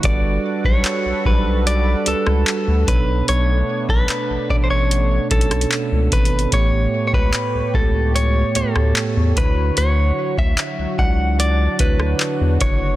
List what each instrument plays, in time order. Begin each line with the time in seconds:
Already playing: analog synth pad F#4
0.03 sub bass G1, tine electric piano G3 D4 F#4 A4 B4, analog synth pad G3 A4 B4, clean electric guitar D5, kick, closed hi-hat
0.64 sub bass B1, clean electric guitar C#5, kick
0.85 clap, closed hi-hat
1.05 sub bass B1
1.25 sub bass B1, tine electric piano G3 D4 F#4 A4 C5, clean electric guitar B4, kick
1.33 tine electric piano D5
1.67 clean electric guitar D5, closed hi-hat
2.06 sub bass C#2, tine electric piano G3 D4 F#4 A4 B4, clean electric guitar A4, closed hi-hat
2.26 sub bass C#2, cross-stick
2.47 clap, closed hi-hat
2.67 sub bass D2
2.87 sub bass B1, tine electric piano B2 B3 D4 A4 C#5, analog synth pad A3 B3 D4, clean electric guitar B4, kick, closed hi-hat
3.28 sub bass B1, clean electric guitar C#5, closed hi-hat
3.89 sub bass B1, clean electric guitar B4, kick
4.09 clap, closed hi-hat
4.30 sub bass A1
4.49 sub bass A1, tine electric piano B2 B3 C#4 A4 C#5, clean electric guitar D5, kick
4.56 tine electric piano D4
4.64 clean electric guitar C5
4.70 clean electric guitar C#5
4.91 closed hi-hat
5.30 sub bass B1, tine electric piano B2 B3 C#4 A4 C#5, clean electric guitar A4, kick, closed hi-hat
5.38 tine electric piano D4, closed hi-hat
5.51 cross-stick, closed hi-hat
5.61 closed hi-hat
5.72 clap, closed hi-hat
5.92 sub bass C#2
6.12 sub bass G#1, clean electric guitar B4, kick, closed hi-hat
6.25 closed hi-hat
6.39 closed hi-hat
6.52 sub bass A1, tine electric piano A2 A3 B3 G4 C#5, analog synth pad G4 C#5, clean electric guitar C#5, kick, closed hi-hat
7.07 clean electric guitar C#5
7.13 sub bass C#2, clean electric guitar B4, kick
7.34 clap, closed hi-hat
7.54 sub bass C#2
7.74 sub bass C#2, tine electric piano A2 A3 B3 G4 C#5, clean electric guitar A4, kick
8.15 clean electric guitar C#5, closed hi-hat
8.55 sub bass D2, tine electric piano A2 A3 B3 G4 C#5, clean electric guitar A4, closed hi-hat
8.76 sub bass D2, cross-stick
8.96 clap, closed hi-hat
9.17 sub bass E2
9.36 sub bass D2, tine electric piano D3 D4 E4 F#4 C5, analog synth pad F#3 F#4, clean electric guitar B4, kick, closed hi-hat
9.44 tine electric piano C#5
9.77 sub bass D2, clean electric guitar C#5, closed hi-hat
10.38 sub bass D2, clean electric guitar E5, kick
10.58 clap, closed hi-hat
10.79 sub bass C#2
10.98 sub bass C#2, tine electric piano F#3 D4 E4 F#4 D5, analog synth pad D4, clean electric guitar F#5, kick
11.40 clean electric guitar D5, closed hi-hat
11.79 sub bass D2, tine electric piano D3 D4 E4 F#4 C#5, clean electric guitar B4, kick, closed hi-hat
12.00 cross-stick
12.20 clap, closed hi-hat
12.41 sub bass E2
12.60 sub bass F#1, clean electric guitar C#5, kick, closed hi-hat